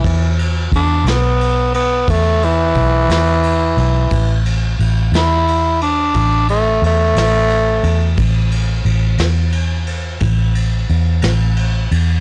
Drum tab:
RD |xxxxxxxxxxxx|xxxxxxxxxxxx|xxxxxxxxxxxx|
SD |---o-----o--|---o-----o--|---o-----o--|
BD |o-o---o-o---|o-----o-----|o-----o-----|